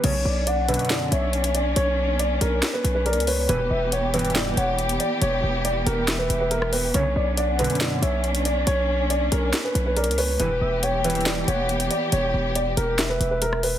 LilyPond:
<<
  \new Staff \with { instrumentName = "Soft synth lead" } { \time 4/4 \key b \minor \tempo 4 = 139 r8 d''8 fis''4. e''8 r4 | r2. d''8 cis''8 | r8 e''8 g''4. fis''8 r4 | r2 e''2 |
r8 d''8 fis''4. e''8 r4 | r2. d''8 cis''8 | r8 e''8 g''4. fis''8 r4 | r2 e''2 | }
  \new Staff \with { instrumentName = "Grand piano" } { \time 4/4 \key b \minor cis''4 d''8 b'8 d''8 cis''4 d''8 | cis''4 d''8 ais'8. b'8 b'16 ais'8 b'8 | b'4 cis''8 b'8 d''8 cis''4 d''8 | cis''4 d''8 ais'8. b'8 b'16 ais'8 b'8 |
cis''4 d''8 b'8 d''8 cis''4 d''8 | cis''4 d''8 ais'8. b'8 b'16 ais'8 b'8 | b'4 cis''8 b'8 d''8 cis''4 d''8 | cis''4 d''8 ais'8. b'8 b'16 ais'8 b'8 | }
  \new Staff \with { instrumentName = "String section" } { \time 4/4 \key b \minor << { <cis' d'>1~ | <cis' d'>1 | <e g'>1~ | <e g'>1 |
<cis' d'>1~ | <cis' d'>1 | <e g'>1~ | <e g'>1 | } \\ { b1~ | b1~ | b1~ | b1~ |
b1~ | b1 | b1~ | b1 | } >> }
  \new Staff \with { instrumentName = "Analog polysynth" } { \clef bass \time 4/4 \key b \minor <d, fis, cis>16 r4 r16 <fis, b, d>4 r4. | r1 | <g, b, e>16 r4 r16 <g, b, e>4 r4. | r1 |
<d, fis, cis>16 r4 r16 <fis, b, d>4 r4. | r1 | <g, b, e>16 r4 r16 <g, b, e>4 r4. | r1 | }
  \new Staff \with { instrumentName = "808-style bass" } { \clef bass \time 4/4 \key b \minor b,,8 b,,4~ b,,16 r8. b,,4. | b,,4. b,,8 r8 b,,8. cis,8. | e,,8 e,,2 e,,4 r8 | e,,8 e,,4 e,,4 e,,4. |
b,,8 b,,4~ b,,16 r8. b,,4. | b,,4. b,,8 r8 b,,8. cis,8. | e,,8 e,,2 e,,4 r8 | e,,8 e,,4 e,,4 e,,4. | }
  \new DrumStaff \with { instrumentName = "Drums" } \drummode { \time 4/4 <cymc hh>4 hh8 hh32 hh32 hh32 hh32 <hc hh sn>8 hh8 hh16 hh16 hh8 | hh4 hh8 hh8 <hc hh sn>8 hh8 \tuplet 3/2 { hh16 hh16 hh16 hho16 r16 r16 } | hh4 hh8 hh32 hh32 hh32 hh32 <hc hh sn>8 hh8 hh16 hh16 hh8 | hh4 hh8 hh8 <hc hh sn>8 hh8 hh16 ss16 hho8 |
hh4 hh8 hh32 hh32 hh32 hh32 <hc hh sn>8 hh8 hh16 hh16 hh8 | hh4 hh8 hh8 <hc hh sn>8 hh8 \tuplet 3/2 { hh16 hh16 hh16 hho16 r16 r16 } | hh4 hh8 hh32 hh32 hh32 hh32 <hc hh sn>8 hh8 hh16 hh16 hh8 | hh4 hh8 hh8 <hc hh sn>8 hh8 hh16 ss16 hho8 | }
>>